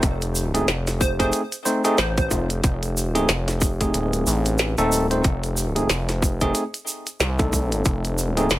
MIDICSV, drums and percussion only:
0, 0, Header, 1, 2, 480
1, 0, Start_track
1, 0, Tempo, 652174
1, 21, Time_signature, 4, 2, 24, 8
1, 6322, End_track
2, 0, Start_track
2, 0, Title_t, "Drums"
2, 20, Note_on_c, 9, 82, 54
2, 21, Note_on_c, 9, 36, 121
2, 21, Note_on_c, 9, 42, 70
2, 94, Note_off_c, 9, 82, 0
2, 95, Note_off_c, 9, 36, 0
2, 95, Note_off_c, 9, 42, 0
2, 158, Note_on_c, 9, 82, 37
2, 163, Note_on_c, 9, 42, 41
2, 232, Note_off_c, 9, 82, 0
2, 237, Note_off_c, 9, 42, 0
2, 259, Note_on_c, 9, 82, 97
2, 333, Note_off_c, 9, 82, 0
2, 402, Note_on_c, 9, 42, 58
2, 405, Note_on_c, 9, 82, 40
2, 476, Note_off_c, 9, 42, 0
2, 479, Note_off_c, 9, 82, 0
2, 501, Note_on_c, 9, 38, 127
2, 501, Note_on_c, 9, 42, 70
2, 503, Note_on_c, 9, 82, 52
2, 575, Note_off_c, 9, 38, 0
2, 575, Note_off_c, 9, 42, 0
2, 576, Note_off_c, 9, 82, 0
2, 641, Note_on_c, 9, 82, 39
2, 643, Note_on_c, 9, 40, 55
2, 643, Note_on_c, 9, 42, 41
2, 715, Note_off_c, 9, 82, 0
2, 716, Note_off_c, 9, 40, 0
2, 716, Note_off_c, 9, 42, 0
2, 741, Note_on_c, 9, 36, 110
2, 744, Note_on_c, 9, 82, 92
2, 815, Note_off_c, 9, 36, 0
2, 817, Note_off_c, 9, 82, 0
2, 881, Note_on_c, 9, 42, 57
2, 882, Note_on_c, 9, 36, 64
2, 887, Note_on_c, 9, 82, 41
2, 955, Note_off_c, 9, 42, 0
2, 956, Note_off_c, 9, 36, 0
2, 960, Note_off_c, 9, 82, 0
2, 974, Note_on_c, 9, 82, 57
2, 980, Note_on_c, 9, 42, 71
2, 1047, Note_off_c, 9, 82, 0
2, 1054, Note_off_c, 9, 42, 0
2, 1121, Note_on_c, 9, 42, 41
2, 1121, Note_on_c, 9, 82, 39
2, 1194, Note_off_c, 9, 82, 0
2, 1195, Note_off_c, 9, 42, 0
2, 1221, Note_on_c, 9, 82, 94
2, 1295, Note_off_c, 9, 82, 0
2, 1358, Note_on_c, 9, 82, 41
2, 1361, Note_on_c, 9, 42, 57
2, 1432, Note_off_c, 9, 82, 0
2, 1434, Note_off_c, 9, 42, 0
2, 1457, Note_on_c, 9, 82, 58
2, 1459, Note_on_c, 9, 38, 123
2, 1459, Note_on_c, 9, 42, 70
2, 1531, Note_off_c, 9, 82, 0
2, 1533, Note_off_c, 9, 38, 0
2, 1533, Note_off_c, 9, 42, 0
2, 1601, Note_on_c, 9, 42, 40
2, 1602, Note_on_c, 9, 36, 117
2, 1602, Note_on_c, 9, 82, 35
2, 1675, Note_off_c, 9, 36, 0
2, 1675, Note_off_c, 9, 42, 0
2, 1675, Note_off_c, 9, 82, 0
2, 1698, Note_on_c, 9, 82, 94
2, 1701, Note_on_c, 9, 36, 65
2, 1772, Note_off_c, 9, 82, 0
2, 1775, Note_off_c, 9, 36, 0
2, 1840, Note_on_c, 9, 42, 56
2, 1842, Note_on_c, 9, 82, 45
2, 1914, Note_off_c, 9, 42, 0
2, 1915, Note_off_c, 9, 82, 0
2, 1940, Note_on_c, 9, 42, 70
2, 1941, Note_on_c, 9, 36, 124
2, 1943, Note_on_c, 9, 82, 61
2, 2014, Note_off_c, 9, 42, 0
2, 2015, Note_off_c, 9, 36, 0
2, 2016, Note_off_c, 9, 82, 0
2, 2081, Note_on_c, 9, 42, 39
2, 2083, Note_on_c, 9, 82, 40
2, 2154, Note_off_c, 9, 42, 0
2, 2157, Note_off_c, 9, 82, 0
2, 2187, Note_on_c, 9, 82, 107
2, 2261, Note_off_c, 9, 82, 0
2, 2321, Note_on_c, 9, 42, 56
2, 2326, Note_on_c, 9, 82, 44
2, 2395, Note_off_c, 9, 42, 0
2, 2399, Note_off_c, 9, 82, 0
2, 2420, Note_on_c, 9, 38, 127
2, 2420, Note_on_c, 9, 42, 69
2, 2421, Note_on_c, 9, 82, 58
2, 2494, Note_off_c, 9, 38, 0
2, 2494, Note_off_c, 9, 42, 0
2, 2494, Note_off_c, 9, 82, 0
2, 2560, Note_on_c, 9, 40, 55
2, 2560, Note_on_c, 9, 42, 39
2, 2563, Note_on_c, 9, 82, 41
2, 2634, Note_off_c, 9, 40, 0
2, 2634, Note_off_c, 9, 42, 0
2, 2637, Note_off_c, 9, 82, 0
2, 2659, Note_on_c, 9, 82, 99
2, 2661, Note_on_c, 9, 36, 111
2, 2732, Note_off_c, 9, 82, 0
2, 2735, Note_off_c, 9, 36, 0
2, 2802, Note_on_c, 9, 36, 65
2, 2802, Note_on_c, 9, 42, 55
2, 2805, Note_on_c, 9, 82, 46
2, 2875, Note_off_c, 9, 36, 0
2, 2875, Note_off_c, 9, 42, 0
2, 2879, Note_off_c, 9, 82, 0
2, 2901, Note_on_c, 9, 82, 53
2, 2902, Note_on_c, 9, 42, 68
2, 2975, Note_off_c, 9, 42, 0
2, 2975, Note_off_c, 9, 82, 0
2, 3039, Note_on_c, 9, 82, 42
2, 3042, Note_on_c, 9, 42, 40
2, 3113, Note_off_c, 9, 82, 0
2, 3116, Note_off_c, 9, 42, 0
2, 3141, Note_on_c, 9, 82, 100
2, 3215, Note_off_c, 9, 82, 0
2, 3278, Note_on_c, 9, 82, 45
2, 3281, Note_on_c, 9, 42, 54
2, 3351, Note_off_c, 9, 82, 0
2, 3355, Note_off_c, 9, 42, 0
2, 3373, Note_on_c, 9, 82, 60
2, 3380, Note_on_c, 9, 38, 127
2, 3380, Note_on_c, 9, 42, 68
2, 3447, Note_off_c, 9, 82, 0
2, 3454, Note_off_c, 9, 38, 0
2, 3454, Note_off_c, 9, 42, 0
2, 3517, Note_on_c, 9, 82, 42
2, 3521, Note_on_c, 9, 42, 39
2, 3590, Note_off_c, 9, 82, 0
2, 3595, Note_off_c, 9, 42, 0
2, 3621, Note_on_c, 9, 82, 108
2, 3695, Note_off_c, 9, 82, 0
2, 3761, Note_on_c, 9, 42, 56
2, 3761, Note_on_c, 9, 82, 40
2, 3834, Note_off_c, 9, 82, 0
2, 3835, Note_off_c, 9, 42, 0
2, 3858, Note_on_c, 9, 82, 57
2, 3860, Note_on_c, 9, 36, 127
2, 3860, Note_on_c, 9, 42, 66
2, 3932, Note_off_c, 9, 82, 0
2, 3933, Note_off_c, 9, 42, 0
2, 3934, Note_off_c, 9, 36, 0
2, 4000, Note_on_c, 9, 82, 38
2, 4001, Note_on_c, 9, 42, 37
2, 4074, Note_off_c, 9, 42, 0
2, 4074, Note_off_c, 9, 82, 0
2, 4099, Note_on_c, 9, 82, 102
2, 4173, Note_off_c, 9, 82, 0
2, 4240, Note_on_c, 9, 42, 54
2, 4243, Note_on_c, 9, 82, 39
2, 4314, Note_off_c, 9, 42, 0
2, 4317, Note_off_c, 9, 82, 0
2, 4339, Note_on_c, 9, 38, 123
2, 4339, Note_on_c, 9, 42, 67
2, 4340, Note_on_c, 9, 82, 57
2, 4412, Note_off_c, 9, 38, 0
2, 4412, Note_off_c, 9, 42, 0
2, 4414, Note_off_c, 9, 82, 0
2, 4480, Note_on_c, 9, 40, 52
2, 4480, Note_on_c, 9, 42, 38
2, 4481, Note_on_c, 9, 82, 38
2, 4554, Note_off_c, 9, 40, 0
2, 4554, Note_off_c, 9, 42, 0
2, 4555, Note_off_c, 9, 82, 0
2, 4580, Note_on_c, 9, 36, 114
2, 4584, Note_on_c, 9, 82, 93
2, 4654, Note_off_c, 9, 36, 0
2, 4658, Note_off_c, 9, 82, 0
2, 4715, Note_on_c, 9, 82, 44
2, 4720, Note_on_c, 9, 42, 54
2, 4721, Note_on_c, 9, 36, 63
2, 4788, Note_off_c, 9, 82, 0
2, 4794, Note_off_c, 9, 42, 0
2, 4795, Note_off_c, 9, 36, 0
2, 4819, Note_on_c, 9, 42, 64
2, 4819, Note_on_c, 9, 82, 60
2, 4893, Note_off_c, 9, 42, 0
2, 4893, Note_off_c, 9, 82, 0
2, 4962, Note_on_c, 9, 42, 39
2, 4963, Note_on_c, 9, 82, 40
2, 5035, Note_off_c, 9, 42, 0
2, 5036, Note_off_c, 9, 82, 0
2, 5060, Note_on_c, 9, 82, 103
2, 5133, Note_off_c, 9, 82, 0
2, 5200, Note_on_c, 9, 82, 44
2, 5202, Note_on_c, 9, 42, 53
2, 5273, Note_off_c, 9, 82, 0
2, 5276, Note_off_c, 9, 42, 0
2, 5301, Note_on_c, 9, 82, 60
2, 5303, Note_on_c, 9, 38, 124
2, 5303, Note_on_c, 9, 42, 67
2, 5374, Note_off_c, 9, 82, 0
2, 5376, Note_off_c, 9, 38, 0
2, 5376, Note_off_c, 9, 42, 0
2, 5438, Note_on_c, 9, 82, 39
2, 5441, Note_on_c, 9, 36, 115
2, 5442, Note_on_c, 9, 42, 36
2, 5512, Note_off_c, 9, 82, 0
2, 5515, Note_off_c, 9, 36, 0
2, 5516, Note_off_c, 9, 42, 0
2, 5541, Note_on_c, 9, 36, 64
2, 5541, Note_on_c, 9, 82, 100
2, 5615, Note_off_c, 9, 36, 0
2, 5615, Note_off_c, 9, 82, 0
2, 5681, Note_on_c, 9, 82, 39
2, 5683, Note_on_c, 9, 42, 54
2, 5754, Note_off_c, 9, 82, 0
2, 5757, Note_off_c, 9, 42, 0
2, 5776, Note_on_c, 9, 82, 52
2, 5781, Note_on_c, 9, 36, 118
2, 5782, Note_on_c, 9, 42, 63
2, 5850, Note_off_c, 9, 82, 0
2, 5855, Note_off_c, 9, 36, 0
2, 5856, Note_off_c, 9, 42, 0
2, 5921, Note_on_c, 9, 82, 34
2, 5922, Note_on_c, 9, 42, 36
2, 5995, Note_off_c, 9, 82, 0
2, 5996, Note_off_c, 9, 42, 0
2, 6021, Note_on_c, 9, 82, 102
2, 6095, Note_off_c, 9, 82, 0
2, 6162, Note_on_c, 9, 42, 52
2, 6164, Note_on_c, 9, 82, 42
2, 6235, Note_off_c, 9, 42, 0
2, 6238, Note_off_c, 9, 82, 0
2, 6255, Note_on_c, 9, 82, 56
2, 6261, Note_on_c, 9, 38, 123
2, 6261, Note_on_c, 9, 42, 64
2, 6322, Note_off_c, 9, 38, 0
2, 6322, Note_off_c, 9, 42, 0
2, 6322, Note_off_c, 9, 82, 0
2, 6322, End_track
0, 0, End_of_file